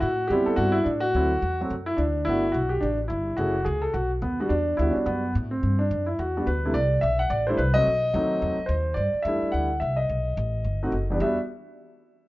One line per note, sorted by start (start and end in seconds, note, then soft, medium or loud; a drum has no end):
0.00 0.30 A2 medium
0.00 0.31 F#4 medium
0.28 0.46 F#2 medium
0.28 0.72 G3 medium
0.28 0.73 B3 medium
0.28 0.45 G4 medium
0.32 0.73 C4 medium
0.32 0.70 E4 medium
0.46 0.59 A4 medium
0.46 muted upright bass stroke soft
0.56 0.85 G2 medium
0.56 0.75 F#4 medium
0.72 0.86 E4 medium
0.84 1.14 A2 medium
0.84 1.03 D4 medium
1.00 1.60 F#4 loud
1.14 1.42 D2 medium
1.14 1.30 F#3 medium
1.14 1.30 A3 soft
1.14 1.30 C4 soft
1.14 1.31 E4 medium
1.42 1.70 E2 medium
1.61 1.71 F#3 medium
1.61 1.71 A3 medium
1.61 1.71 C4 medium
1.61 1.71 F#4 medium
1.70 1.97 F#2 medium
1.86 1.99 E4 medium
1.97 2.26 D2 medium
1.97 2.24 D4 medium
2.25 2.54 G1 medium
2.25 2.43 A3 medium
2.25 2.43 B3 medium
2.25 2.43 D4 medium
2.25 2.55 E4 loud
2.30 2.43 F#4 medium
2.52 2.82 B1 medium
2.52 2.71 F#4 medium
2.69 2.82 G4 medium
2.81 3.09 A1 medium
2.81 2.97 D4 medium
3.08 3.37 G1 medium
3.08 3.35 E4 medium
3.37 3.65 F#1 medium
3.37 3.54 A3 medium
3.37 3.54 C#4 soft
3.37 3.54 E4 soft
3.37 3.64 F#4 medium
3.37 3.54 G#4 medium
3.65 3.93 C#2 medium
3.65 3.83 G#4 medium
3.82 3.93 A4 medium
3.94 4.21 B1 medium
3.94 4.10 F#4 medium
4.22 4.49 D#2 medium
4.22 4.39 B3 medium
4.40 4.50 G3 medium
4.40 4.50 B3 medium
4.40 4.48 D4 medium
4.40 4.50 F#4 medium
4.49 4.78 E2 medium
4.49 4.79 D4 medium
4.77 4.94 D2 medium
4.77 5.20 G3 medium
4.77 5.04 B3 medium
4.77 4.92 D4 medium
4.77 4.91 E4 medium
4.81 5.21 F#4 medium
4.91 4.95 C#4 medium
4.91 5.06 D4 medium
4.96 muted upright bass stroke soft
5.06 5.34 F#2 medium
5.06 5.32 B3 medium
5.35 5.62 A2 medium
5.51 5.80 C4 medium
5.63 5.90 G2 medium
5.79 6.05 D4 medium
5.91 6.18 F#2 medium
6.06 6.19 E4 medium
6.19 6.46 E2 medium
6.19 6.36 F#4 medium
6.37 6.46 G3 medium
6.37 6.46 B3 medium
6.37 6.47 D4 medium
6.37 6.46 F#4 medium
6.47 6.74 D2 medium
6.47 6.75 B4 medium
6.65 6.74 C3 medium
6.65 6.74 G3 medium
6.65 6.74 A3 medium
6.65 6.75 D4 medium
6.65 6.75 E4 medium
6.74 7.02 C2 medium
6.74 7.00 D5 loud
7.01 7.30 B1 medium
7.01 7.19 E5 medium
7.19 7.31 F#5 medium
7.30 7.57 A1 medium
7.30 7.47 D5 medium
7.47 7.58 G3 medium
7.47 7.58 A3 medium
7.47 7.58 D4 medium
7.47 7.58 E4 medium
7.47 7.59 C5 medium
7.57 7.85 C2 medium
7.57 7.75 B4 medium
7.74 7.85 F#3 medium
7.74 7.85 A3 medium
7.74 7.85 C4 medium
7.74 7.86 F#4 medium
7.74 8.72 D#5 loud
7.87 8.13 B1 medium
8.13 8.41 D#2 medium
8.13 8.55 F#3 medium
8.13 8.56 A3 medium
8.13 8.56 C4 medium
8.13 8.56 D#4 medium
8.42 8.57 E2 medium
8.59 muted upright bass stroke soft
8.66 8.96 D#2 medium
8.66 8.97 C5 medium
8.94 9.13 G2 medium
8.94 9.22 D5 medium
9.14 muted upright bass stroke soft
9.22 9.41 E2 medium
9.22 9.67 G3 medium
9.22 9.67 A3 medium
9.22 9.50 E5 medium
9.27 9.68 D4 medium
9.27 9.68 E4 medium
9.42 muted upright bass stroke soft
9.52 9.81 D2 medium
9.52 9.81 F#5 medium
9.80 10.09 C2 medium
9.80 9.96 E5 medium
9.96 11.05 D#5 medium
10.09 10.36 B1 medium
10.37 10.64 A1 medium
10.64 10.91 G1 medium
10.83 10.92 A3 medium
10.83 10.93 C4 medium
10.83 10.92 D#4 medium
10.83 10.93 F#4 medium
10.92 11.20 F#1 medium
11.10 11.20 E2 medium
11.10 11.19 G3 medium
11.10 11.19 B3 medium
11.10 11.20 D4 medium
11.10 11.21 G4 medium
11.20 11.36 E2 medium
11.20 11.36 G3 medium
11.20 11.36 B3 medium
11.20 11.36 D4 medium
11.20 11.36 F#4 medium
11.20 11.37 E5 medium